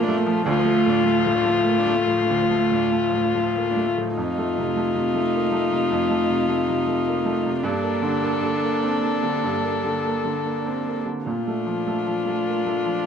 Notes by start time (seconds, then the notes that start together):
Already playing: A#2 F3 A3 A#3 F4
0.03 D4
0.08 A3
0.17 A#3
0.26 F3
0.31 A3
0.45 D2 D3 A3 F4
0.60 F3
0.65 A3
0.75 A3
0.86 A2 D4
1.04 A3
1.19 F3
1.26 A2
1.35 D3
1.45 A3
1.49 F3
1.64 A3 A#3
1.79 D4
1.87 A3
1.95 A3
2.07 A2 F3
2.27 D2 D3
2.42 F3
2.50 A3
2.58 A3
2.71 A2 D4
2.91 A3
3.07 F3
3.13 A2
3.24 D3
3.35 A3
3.39 F3
3.55 A3 A#3
3.71 D4
3.77 A3
3.87 A3
3.98 A2 F3
4.16 F2 A3 D#4 F4
4.38 A3
4.58 C3
4.77 A3
4.95 C3
5.14 A3
5.34 A#3
5.52 A3
5.72 C3
5.91 F2
6.10 A3
6.30 C3
6.49 A3
6.68 C3
6.87 A3
7.06 A#3
7.25 A3
7.45 C3
7.63 G2 A#3 D4 A4
7.82 A#3
8.02 D3
8.22 A#3
8.42 D3
8.62 A#3
8.83 C4
9.02 A#3
9.23 D3
9.44 G2
9.63 A#3
9.84 D3
10.04 A#3
10.25 D3
10.45 A#3
10.66 C4
10.86 A#3
11.06 D3
11.26 A#2 A3 D4 F4
11.47 A3
11.66 F3
11.87 A3
12.07 F3
12.26 A3
12.46 A#3
12.66 A3
12.86 F3